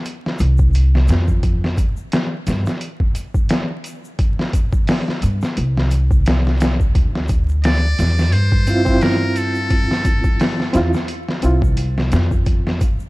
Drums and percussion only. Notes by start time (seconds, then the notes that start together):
0.05 closed hi-hat, shaker
0.26 snare
0.39 closed hi-hat, shaker
0.57 kick, shaker
0.73 closed hi-hat, shaker
0.95 snare
1.08 snare, closed hi-hat, shaker
1.28 kick, shaker
1.43 kick, closed hi-hat, shaker
1.64 snare
1.78 kick, closed hi-hat, shaker
1.97 shaker
2.12 snare, closed hi-hat, shaker
2.47 snare, closed hi-hat, shaker
2.66 snare, shaker
2.81 closed hi-hat, shaker
3.00 kick
3.15 closed hi-hat, shaker
3.34 kick, shaker
3.49 snare, closed hi-hat, shaker
3.84 closed hi-hat, shaker
4.05 shaker
4.19 kick, closed hi-hat, shaker
4.39 snare
4.53 kick, closed hi-hat, shaker
4.73 kick, shaker
4.87 snare, open hi-hat, shaker
5.08 snare
5.22 closed hi-hat, shaker
5.41 snare, shaker
5.57 closed hi-hat, shaker
5.77 snare
5.91 closed hi-hat, shaker
6.11 kick, shaker
6.25 snare, closed hi-hat, shaker
6.47 snare
6.60 snare, closed hi-hat, shaker
6.80 kick, shaker
6.95 kick, closed hi-hat, shaker
7.15 snare
7.28 kick, closed hi-hat, shaker
7.49 shaker
7.64 snare, closed hi-hat, shaker
7.98 snare, closed hi-hat, shaker
8.18 snare, shaker
8.32 closed hi-hat, shaker
8.52 kick
8.67 closed hi-hat, shaker
8.86 kick, shaker
9.01 snare, closed hi-hat, shaker
9.36 closed hi-hat, shaker
9.55 shaker
9.70 kick, closed hi-hat, shaker
9.91 snare
10.05 kick, closed hi-hat, shaker
10.24 kick, shaker
10.40 snare, open hi-hat, shaker
10.60 snare
10.74 snare, closed hi-hat, shaker
10.93 snare, shaker
11.08 closed hi-hat, shaker
11.28 snare
11.42 closed hi-hat, shaker
11.62 kick, shaker
11.77 closed hi-hat, shaker
11.98 snare
12.12 snare, closed hi-hat, shaker
12.31 kick, shaker
12.45 kick, closed hi-hat, shaker
12.67 snare
12.81 kick, closed hi-hat, shaker
13.00 shaker